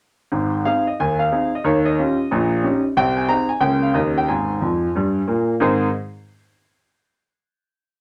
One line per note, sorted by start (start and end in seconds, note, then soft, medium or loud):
0.32 0.60 G#1 medium
0.32 0.60 G#2 medium
0.65 0.84 C4 soft
0.65 0.84 D#4 soft
0.65 0.84 G#4 soft
0.65 0.86 F5 medium
0.87 0.98 D#5 medium
1.00 1.27 D#2 medium
1.00 1.27 D#3 medium
1.00 1.20 G#5 medium
1.19 1.53 F5 medium
1.32 1.50 C4 soft
1.32 1.50 D#4 soft
1.32 1.50 G#4 soft
1.55 1.65 D#5 medium
1.64 1.92 D#2 medium
1.64 1.92 D#3 medium
1.64 1.85 C#5 medium
1.85 2.84 D#5 medium
1.99 2.16 C#4 medium
1.99 2.17 F4 medium
1.99 2.17 G4 medium
2.31 2.59 A#1 medium
2.31 2.59 A#2 medium
2.63 2.81 C#4 soft
2.63 2.82 D#4 soft
2.63 2.82 G4 soft
2.97 3.25 C2 medium
2.97 3.25 C3 medium
2.97 3.17 G5 loud
3.17 3.29 G#5 medium
3.29 3.47 C4 soft
3.29 3.47 D#4 soft
3.29 3.47 G#4 soft
3.29 3.50 A#5 medium
3.49 3.62 G#5 medium
3.60 3.89 C#2 medium
3.60 3.89 C#3 medium
3.60 3.79 A#3 soft
3.60 3.79 C#4 soft
3.60 3.80 G#4 soft
3.60 3.82 G5 medium
3.83 3.95 F5 medium
3.94 4.22 D#2 medium
3.94 4.23 D#3 medium
3.94 4.12 A#3 soft
3.94 4.13 C#4 soft
3.94 4.13 G4 soft
3.94 4.16 D#5 medium
4.18 4.29 G5 medium
4.28 4.57 G#1 medium
4.28 4.57 G#2 medium
4.28 5.49 G#5 medium
4.61 4.86 F2 medium
4.61 4.86 F3 medium
4.95 5.20 G2 medium
4.95 5.20 G3 medium
5.28 5.53 A#2 medium
5.28 5.53 A#3 medium
5.60 5.82 G#2 loud
5.60 5.83 D#3 medium
5.60 5.83 C4 medium
5.60 5.83 D#4 medium
5.60 5.83 G#4 medium
5.60 5.83 C5 medium